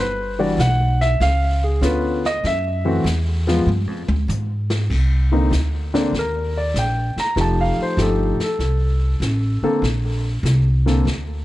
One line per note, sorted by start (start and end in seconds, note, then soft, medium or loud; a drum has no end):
0.00 0.57 G1 medium
0.00 0.39 B4 medium
0.39 0.57 E3 medium
0.39 0.57 G3 medium
0.39 0.57 D4 medium
0.39 0.57 F#4 medium
0.39 0.58 D5 medium
0.58 1.18 B1 medium
0.58 1.00 F#5 medium
0.58 snare medium
0.58 hi-hat pedal medium
1.01 1.20 E5 medium
1.01 snare soft
1.20 1.80 C#2 medium
1.20 1.62 F5 loud
1.20 brush sweep medium
1.20 snare soft
1.64 1.82 G#4 medium
1.81 2.41 D2 medium
1.81 2.20 D3 medium
1.81 2.20 B3 medium
1.81 2.20 C#4 medium
1.81 2.20 F4 medium
1.81 2.24 B4 medium
1.81 snare medium
1.81 hi-hat pedal soft
2.25 2.44 D#5 medium
2.25 snare soft
2.44 3.03 F#2 medium
2.44 3.03 E5 medium
2.44 brush sweep soft
2.44 snare soft
2.85 3.03 E3 medium
2.85 3.03 A3 medium
2.85 3.03 C4 medium
2.85 3.04 F#4 medium
3.04 3.64 E2 medium
3.04 snare medium
3.04 hi-hat pedal medium
3.47 3.65 F3 medium
3.47 3.65 G#3 medium
3.47 3.65 B3 medium
3.47 3.65 F4 medium
3.47 snare soft
3.66 3.87 G2 medium
3.66 high tom soft
3.87 4.07 F2 medium
4.08 4.27 D2 medium
4.08 high tom medium
4.28 4.88 G#2 medium
4.28 hi-hat pedal soft
4.28 mid tom medium
4.70 snare medium
4.90 5.50 C2 medium
4.90 brush sweep soft
4.90 kick medium
4.90 snare soft
4.90 crash medium
5.32 5.50 D3 medium
5.32 5.50 A#3 medium
5.32 5.50 C4 medium
5.32 5.50 D#4 medium
5.51 6.11 D2 medium
5.51 snare medium
5.51 hi-hat pedal soft
5.94 6.11 D3 medium
5.94 6.11 A#3 medium
5.94 6.12 C4 medium
5.94 6.12 D4 medium
5.94 snare soft
6.12 6.73 D#2 medium
6.12 brush sweep soft
6.12 snare soft
6.19 6.57 A#4 medium
6.57 6.75 D5 medium
6.74 7.14 A#1 medium
6.74 snare medium
6.74 hi-hat pedal medium
6.79 7.18 G5 medium
7.16 7.37 A#5 medium
7.16 muted upright bass stroke soft
7.16 snare soft
7.36 7.75 F1 medium
7.36 7.96 F3 soft
7.36 7.96 A3 soft
7.36 7.96 D#4 soft
7.36 7.97 G4 soft
7.36 brush sweep soft
7.36 snare soft
7.41 7.59 A5 medium
7.61 7.79 F5 medium
7.78 muted upright bass stroke soft
7.82 8.00 C5 medium
7.97 8.37 G1 medium
7.97 8.36 F3 medium
7.97 8.36 A3 soft
7.97 8.36 D#4 soft
7.97 8.36 G4 medium
7.97 snare medium
7.97 hi-hat pedal soft
8.02 8.41 A4 medium
8.39 muted upright bass stroke soft
8.39 snare soft
8.44 9.63 A4 medium
8.59 9.19 C2 medium
8.59 brush sweep soft
8.59 snare soft
9.20 9.60 A1 medium
9.20 snare medium
9.20 hi-hat pedal soft
9.62 9.81 D3 medium
9.62 9.81 A#3 medium
9.62 9.81 C4 medium
9.62 9.82 A4 medium
9.62 muted upright bass stroke soft
9.82 10.42 A#1 medium
9.82 brush sweep soft
9.82 snare soft
10.43 11.04 C2 medium
10.43 snare medium
10.43 hi-hat pedal medium
10.86 11.04 D3 medium
10.86 11.04 A#3 soft
10.86 11.05 C4 soft
10.86 11.05 A4 medium
10.86 snare soft
11.05 11.45 D2 medium
11.05 brush sweep soft
11.05 snare soft